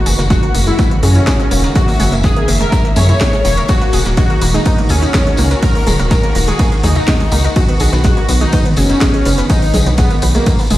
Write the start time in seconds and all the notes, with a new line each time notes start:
Already playing: G#2 C#3 D#3 A#3 F#4
0.06 F#1 G#4 G#5, closed hi-hat, open hi-hat, tambourine
0.18 F#1 A#3 A#4, snare, closed hi-hat, tambourine
0.30 G#3 F#4 G#4, kick, snare, closed hi-hat, tambourine
0.43 A#3 A#4, closed hi-hat
0.55 F#1 A#3 A#4, closed hi-hat, open hi-hat, tambourine
0.67 G#3 E4 G#4, closed hi-hat, tambourine
0.79 A#3 A#4, kick, closed hi-hat, tambourine
0.91 A#3 A#4, closed hi-hat, mid tom
1.03 F#2 C#4 G#4 G#5, closed hi-hat, open hi-hat, tambourine
1.14 E4 E5, closed hi-hat, tambourine
1.27 G#3 G#4, kick, snare, closed hi-hat, tambourine
1.40 G#3 G#4, snare, closed hi-hat
1.51 E1 A#3 A#4, closed hi-hat, open hi-hat, tambourine
1.63 A#4 A#5, snare, closed hi-hat, tambourine
1.75 G#3 F#4 G#4 E5, kick, closed hi-hat, tambourine
1.88 A#3 A#4, open hi-hat, tambourine
2.00 F#1 G#4 G#5, snare, closed hi-hat, mid tom, open hi-hat, tambourine
2.12 F#1 A#3 A#4, closed hi-hat, tambourine
2.23 G#3 G#4, kick, snare, closed hi-hat, tambourine
2.36 A#3 A#4, closed hi-hat
2.48 F#1 A#3 A#4, closed hi-hat, open hi-hat, tambourine
2.61 G#3 G#4 A#4, closed hi-hat, tambourine
2.72 A#3 A#4, kick, closed hi-hat, tambourine
2.85 A#3 A#4, snare, closed hi-hat
2.96 F#2 G#4 C#5 G#5, snare, closed hi-hat, mid tom, open hi-hat, tambourine
3.09 E4 E5, closed hi-hat, tambourine
3.20 G#3 G#4, kick, snare, closed hi-hat, open hi-hat, tambourine
3.33 G#3 G#4, snare, closed hi-hat
3.45 E1 A#3 A#4, snare, closed hi-hat, open hi-hat, tambourine
3.57 A#4 A#5, closed hi-hat, tambourine
3.68 D#3 G#3 F#4 G#4, kick, closed hi-hat, ride, tambourine
3.81 A#3 A#4, closed hi-hat
3.93 D#1 G#4 G#5, closed hi-hat, open hi-hat, tambourine
4.05 D#1 A#3 A#4, snare, closed hi-hat, tambourine
4.17 G#3 F#4 G#4, kick, snare, closed hi-hat, ride, tambourine
4.30 A#3 A#4, closed hi-hat
4.41 D#1 A#3 A#4, closed hi-hat, open hi-hat, tambourine
4.54 G#3 D#4 G#4, closed hi-hat, tambourine
4.65 A#3 A#4, kick, closed hi-hat, ride, tambourine
4.78 A#3 A#4, closed hi-hat, mid tom
4.89 D#2 C#4 G#4 G#5, closed hi-hat, open hi-hat, tambourine
5.02 D#4 D#5, closed hi-hat, tambourine
5.14 G#3 G#4, kick, snare, closed hi-hat, ride, tambourine
5.27 G#3 G#4, snare, closed hi-hat
5.37 C#2 A#3 A#4, closed hi-hat, open hi-hat, tambourine
5.51 A#4 A#5, snare, closed hi-hat, tambourine
5.63 G#3 G#4 A#4, kick, closed hi-hat, ride, tambourine
5.75 A#3 A#4, open hi-hat
5.86 D#1 G#4 G#5, snare, closed hi-hat, mid tom, open hi-hat, tambourine
5.99 D#1 A#3 A#4, closed hi-hat, tambourine
6.10 G#3 G#4 A#4, kick, snare, closed hi-hat, ride, tambourine
6.23 A#3 A#4, closed hi-hat
6.35 D#1 A#3 A#4, closed hi-hat, open hi-hat, tambourine
6.47 G#3 G#4, closed hi-hat, tambourine
6.59 A#3 A#4, kick, closed hi-hat, ride, tambourine
6.71 A#3 A#4, snare, closed hi-hat
6.83 D#2 D#4 G#4 G#5, snare, closed hi-hat, mid tom, open hi-hat, tambourine
6.95 D#4 D#5, closed hi-hat, tambourine
7.07 G#3 G#4, kick, snare, closed hi-hat, open hi-hat, ride, tambourine
7.20 G#3 G#4, snare, closed hi-hat
7.32 C#2 A#3 A#4, closed hi-hat, open hi-hat, tambourine
7.44 A#4 A#5, closed hi-hat, tambourine
7.56 G#3 B3 F#4 G#4, kick, closed hi-hat, ride, tambourine
7.69 B3 B4, closed hi-hat
7.80 B1 G#4 G#5, closed hi-hat, open hi-hat, tambourine
7.92 B1 B3 B4, snare, closed hi-hat, tambourine
8.04 G#3 F#4 G#4, kick, snare, closed hi-hat, ride, tambourine
8.17 A#3 A#4, closed hi-hat
8.29 B1 B3 B4, closed hi-hat, open hi-hat, tambourine
8.41 G#3 D#4 G#4, closed hi-hat, tambourine
8.52 B3 B4, kick, closed hi-hat, ride, tambourine
8.65 B3 B4, closed hi-hat, mid tom
8.76 F#1 C#4 G#4 G#5, closed hi-hat, open hi-hat, tambourine
8.89 D#4 D#5, closed hi-hat, tambourine
9.01 G#3 G#4, kick, snare, closed hi-hat, ride, tambourine
9.13 G#3 G#4, snare, closed hi-hat
9.25 F#1 B3 B4, closed hi-hat, open hi-hat, tambourine
9.38 B4 B5, snare, closed hi-hat, tambourine
9.50 G#3 D#4 G#4, kick, closed hi-hat, ride, tambourine
9.62 B3 B4, open hi-hat, tambourine
9.74 B1 G#4 G#5, snare, closed hi-hat, mid tom, open hi-hat, tambourine
9.86 B1 B3 B4, closed hi-hat, tambourine
9.98 G#3 B3 G#4, kick, snare, closed hi-hat, ride, tambourine
10.10 A#3 A#4, closed hi-hat, tambourine
10.22 B1 B3 B4, closed hi-hat, open hi-hat, tambourine
10.35 G#3 A#3 G#4, closed hi-hat, tambourine
10.46 B3 B4, kick, closed hi-hat, ride, tambourine
10.58 B3 B4, snare, open hi-hat, tambourine
10.70 F#1 G#3 G#4 G#5, closed hi-hat, mid tom, open hi-hat, tambourine